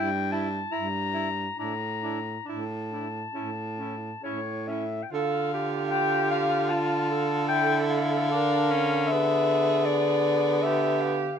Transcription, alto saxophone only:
0, 0, Header, 1, 2, 480
1, 0, Start_track
1, 0, Key_signature, -1, "minor"
1, 0, Tempo, 781250
1, 448, Tempo, 859599
1, 928, Time_signature, 4, 2, 24, 8
1, 928, Tempo, 881057
1, 2848, Tempo, 800000
1, 5248, Tempo, 763359
1, 6680, End_track
2, 0, Start_track
2, 0, Title_t, "Alto saxophone"
2, 0, Program_c, 0, 65
2, 199, Note_on_c, 0, 64, 63
2, 298, Note_off_c, 0, 64, 0
2, 437, Note_on_c, 0, 64, 63
2, 528, Note_off_c, 0, 64, 0
2, 670, Note_on_c, 0, 64, 55
2, 759, Note_off_c, 0, 64, 0
2, 929, Note_on_c, 0, 64, 55
2, 1016, Note_off_c, 0, 64, 0
2, 1172, Note_on_c, 0, 64, 53
2, 1259, Note_off_c, 0, 64, 0
2, 1416, Note_on_c, 0, 64, 53
2, 1503, Note_off_c, 0, 64, 0
2, 1653, Note_on_c, 0, 64, 48
2, 1740, Note_off_c, 0, 64, 0
2, 1886, Note_on_c, 0, 64, 52
2, 1973, Note_off_c, 0, 64, 0
2, 2135, Note_on_c, 0, 64, 49
2, 2222, Note_off_c, 0, 64, 0
2, 2374, Note_on_c, 0, 64, 50
2, 2461, Note_off_c, 0, 64, 0
2, 2623, Note_on_c, 0, 64, 48
2, 2710, Note_off_c, 0, 64, 0
2, 2861, Note_on_c, 0, 69, 89
2, 3084, Note_off_c, 0, 69, 0
2, 3100, Note_on_c, 0, 67, 88
2, 3805, Note_on_c, 0, 65, 90
2, 3814, Note_off_c, 0, 67, 0
2, 4041, Note_off_c, 0, 65, 0
2, 4045, Note_on_c, 0, 69, 88
2, 4785, Note_on_c, 0, 70, 93
2, 4794, Note_off_c, 0, 69, 0
2, 5247, Note_off_c, 0, 70, 0
2, 5251, Note_on_c, 0, 68, 94
2, 6218, Note_on_c, 0, 67, 91
2, 6228, Note_off_c, 0, 68, 0
2, 6680, Note_off_c, 0, 67, 0
2, 6680, End_track
0, 0, End_of_file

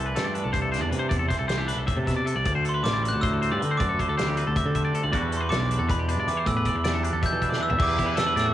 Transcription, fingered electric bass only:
0, 0, Header, 1, 2, 480
1, 0, Start_track
1, 0, Key_signature, 1, "minor"
1, 0, Tempo, 381679
1, 1411, Time_signature, 7, 3, 24, 8
1, 10737, End_track
2, 0, Start_track
2, 0, Title_t, "Fingered electric bass"
2, 0, Program_c, 0, 33
2, 0, Note_on_c, 0, 36, 100
2, 167, Note_off_c, 0, 36, 0
2, 218, Note_on_c, 0, 43, 91
2, 547, Note_off_c, 0, 43, 0
2, 564, Note_on_c, 0, 36, 83
2, 1029, Note_off_c, 0, 36, 0
2, 1029, Note_on_c, 0, 40, 99
2, 1140, Note_off_c, 0, 40, 0
2, 1147, Note_on_c, 0, 48, 83
2, 1380, Note_off_c, 0, 48, 0
2, 1395, Note_on_c, 0, 40, 101
2, 1624, Note_off_c, 0, 40, 0
2, 1751, Note_on_c, 0, 36, 73
2, 2204, Note_off_c, 0, 36, 0
2, 2227, Note_on_c, 0, 36, 76
2, 2350, Note_off_c, 0, 36, 0
2, 2472, Note_on_c, 0, 48, 98
2, 2926, Note_off_c, 0, 48, 0
2, 2960, Note_on_c, 0, 36, 78
2, 3077, Note_off_c, 0, 36, 0
2, 3094, Note_on_c, 0, 38, 98
2, 3538, Note_off_c, 0, 38, 0
2, 3570, Note_on_c, 0, 33, 98
2, 3905, Note_off_c, 0, 33, 0
2, 3936, Note_on_c, 0, 38, 79
2, 4421, Note_off_c, 0, 38, 0
2, 4421, Note_on_c, 0, 43, 93
2, 4529, Note_off_c, 0, 43, 0
2, 4559, Note_on_c, 0, 50, 85
2, 4770, Note_off_c, 0, 50, 0
2, 4783, Note_on_c, 0, 42, 106
2, 5001, Note_off_c, 0, 42, 0
2, 5140, Note_on_c, 0, 38, 82
2, 5581, Note_off_c, 0, 38, 0
2, 5629, Note_on_c, 0, 38, 81
2, 5734, Note_off_c, 0, 38, 0
2, 5853, Note_on_c, 0, 50, 102
2, 6298, Note_off_c, 0, 50, 0
2, 6335, Note_on_c, 0, 38, 90
2, 6446, Note_off_c, 0, 38, 0
2, 6458, Note_on_c, 0, 40, 99
2, 6900, Note_off_c, 0, 40, 0
2, 6919, Note_on_c, 0, 35, 90
2, 7259, Note_off_c, 0, 35, 0
2, 7276, Note_on_c, 0, 40, 82
2, 7767, Note_off_c, 0, 40, 0
2, 7767, Note_on_c, 0, 43, 96
2, 7882, Note_off_c, 0, 43, 0
2, 7890, Note_on_c, 0, 52, 86
2, 8114, Note_off_c, 0, 52, 0
2, 8122, Note_on_c, 0, 45, 103
2, 8349, Note_off_c, 0, 45, 0
2, 8479, Note_on_c, 0, 40, 79
2, 8928, Note_off_c, 0, 40, 0
2, 8964, Note_on_c, 0, 40, 81
2, 9078, Note_off_c, 0, 40, 0
2, 9213, Note_on_c, 0, 52, 99
2, 9654, Note_off_c, 0, 52, 0
2, 9685, Note_on_c, 0, 40, 90
2, 9798, Note_off_c, 0, 40, 0
2, 9804, Note_on_c, 0, 40, 103
2, 10028, Note_off_c, 0, 40, 0
2, 10046, Note_on_c, 0, 52, 89
2, 10269, Note_off_c, 0, 52, 0
2, 10516, Note_on_c, 0, 45, 78
2, 10737, Note_off_c, 0, 45, 0
2, 10737, End_track
0, 0, End_of_file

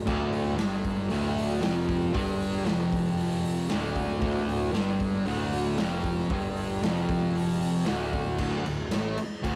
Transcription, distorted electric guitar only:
0, 0, Header, 1, 3, 480
1, 0, Start_track
1, 0, Key_signature, -1, "minor"
1, 0, Tempo, 520833
1, 72, Time_signature, 4, 2, 24, 8
1, 8806, End_track
2, 0, Start_track
2, 0, Title_t, "Distorted electric guitar"
2, 0, Program_c, 0, 30
2, 54, Note_on_c, 0, 38, 91
2, 66, Note_on_c, 0, 50, 113
2, 519, Note_off_c, 0, 38, 0
2, 522, Note_on_c, 0, 43, 95
2, 528, Note_off_c, 0, 50, 0
2, 532, Note_on_c, 0, 55, 92
2, 1005, Note_off_c, 0, 43, 0
2, 1009, Note_on_c, 0, 38, 91
2, 1012, Note_off_c, 0, 55, 0
2, 1019, Note_on_c, 0, 50, 92
2, 1489, Note_off_c, 0, 38, 0
2, 1493, Note_on_c, 0, 41, 90
2, 1495, Note_off_c, 0, 50, 0
2, 1508, Note_on_c, 0, 53, 102
2, 1964, Note_off_c, 0, 41, 0
2, 1967, Note_on_c, 0, 43, 102
2, 1970, Note_off_c, 0, 53, 0
2, 1974, Note_on_c, 0, 55, 107
2, 2447, Note_off_c, 0, 43, 0
2, 2447, Note_on_c, 0, 41, 91
2, 2462, Note_off_c, 0, 55, 0
2, 2462, Note_on_c, 0, 53, 112
2, 3399, Note_off_c, 0, 41, 0
2, 3402, Note_on_c, 0, 38, 98
2, 3413, Note_off_c, 0, 53, 0
2, 3418, Note_on_c, 0, 50, 109
2, 3859, Note_off_c, 0, 38, 0
2, 3868, Note_off_c, 0, 50, 0
2, 3870, Note_on_c, 0, 38, 94
2, 3879, Note_on_c, 0, 50, 102
2, 4348, Note_off_c, 0, 38, 0
2, 4351, Note_on_c, 0, 43, 93
2, 4358, Note_off_c, 0, 50, 0
2, 4362, Note_on_c, 0, 55, 112
2, 4837, Note_off_c, 0, 43, 0
2, 4843, Note_off_c, 0, 55, 0
2, 4848, Note_on_c, 0, 38, 90
2, 4855, Note_on_c, 0, 50, 90
2, 5326, Note_off_c, 0, 38, 0
2, 5329, Note_off_c, 0, 50, 0
2, 5330, Note_on_c, 0, 41, 92
2, 5335, Note_on_c, 0, 53, 102
2, 5807, Note_off_c, 0, 41, 0
2, 5810, Note_off_c, 0, 53, 0
2, 5818, Note_on_c, 0, 43, 96
2, 5822, Note_on_c, 0, 55, 102
2, 6287, Note_off_c, 0, 43, 0
2, 6291, Note_on_c, 0, 41, 91
2, 6294, Note_off_c, 0, 55, 0
2, 6302, Note_on_c, 0, 53, 104
2, 7240, Note_off_c, 0, 41, 0
2, 7244, Note_on_c, 0, 38, 84
2, 7252, Note_off_c, 0, 53, 0
2, 7256, Note_on_c, 0, 50, 95
2, 7728, Note_off_c, 0, 38, 0
2, 7733, Note_off_c, 0, 50, 0
2, 7737, Note_on_c, 0, 38, 92
2, 7744, Note_on_c, 0, 50, 94
2, 7959, Note_off_c, 0, 38, 0
2, 7970, Note_on_c, 0, 38, 71
2, 7978, Note_off_c, 0, 50, 0
2, 8171, Note_off_c, 0, 38, 0
2, 8214, Note_on_c, 0, 45, 90
2, 8230, Note_on_c, 0, 57, 108
2, 8454, Note_off_c, 0, 45, 0
2, 8462, Note_off_c, 0, 57, 0
2, 8684, Note_on_c, 0, 38, 86
2, 8696, Note_on_c, 0, 50, 102
2, 8806, Note_off_c, 0, 38, 0
2, 8806, Note_off_c, 0, 50, 0
2, 8806, End_track
3, 0, Start_track
3, 0, Title_t, "Muted distorted electric guitar strokes"
3, 8458, Note_on_c, 9, 29, 57
3, 8551, Note_off_c, 9, 29, 0
3, 8806, End_track
0, 0, End_of_file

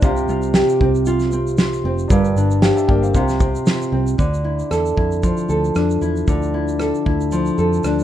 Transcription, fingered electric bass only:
0, 0, Header, 1, 2, 480
1, 0, Start_track
1, 0, Key_signature, -1, "minor"
1, 0, Tempo, 520833
1, 24, Time_signature, 4, 2, 24, 8
1, 7408, End_track
2, 0, Start_track
2, 0, Title_t, "Fingered electric bass"
2, 0, Program_c, 0, 33
2, 24, Note_on_c, 0, 36, 102
2, 221, Note_off_c, 0, 36, 0
2, 264, Note_on_c, 0, 36, 101
2, 568, Note_off_c, 0, 36, 0
2, 746, Note_on_c, 0, 36, 97
2, 1665, Note_off_c, 0, 36, 0
2, 1696, Note_on_c, 0, 29, 92
2, 1894, Note_off_c, 0, 29, 0
2, 1938, Note_on_c, 0, 31, 98
2, 2135, Note_off_c, 0, 31, 0
2, 2176, Note_on_c, 0, 31, 104
2, 2482, Note_off_c, 0, 31, 0
2, 2663, Note_on_c, 0, 31, 98
2, 2858, Note_off_c, 0, 31, 0
2, 2900, Note_on_c, 0, 36, 91
2, 3293, Note_off_c, 0, 36, 0
2, 3613, Note_on_c, 0, 36, 93
2, 3812, Note_off_c, 0, 36, 0
2, 3860, Note_on_c, 0, 38, 87
2, 4253, Note_off_c, 0, 38, 0
2, 4339, Note_on_c, 0, 40, 71
2, 4536, Note_off_c, 0, 40, 0
2, 4585, Note_on_c, 0, 41, 66
2, 4888, Note_off_c, 0, 41, 0
2, 5058, Note_on_c, 0, 38, 86
2, 5256, Note_off_c, 0, 38, 0
2, 5304, Note_on_c, 0, 41, 79
2, 5499, Note_off_c, 0, 41, 0
2, 5543, Note_on_c, 0, 40, 78
2, 5739, Note_off_c, 0, 40, 0
2, 5786, Note_on_c, 0, 38, 101
2, 6367, Note_off_c, 0, 38, 0
2, 6509, Note_on_c, 0, 38, 88
2, 6901, Note_off_c, 0, 38, 0
2, 6985, Note_on_c, 0, 41, 83
2, 7182, Note_off_c, 0, 41, 0
2, 7224, Note_on_c, 0, 38, 77
2, 7408, Note_off_c, 0, 38, 0
2, 7408, End_track
0, 0, End_of_file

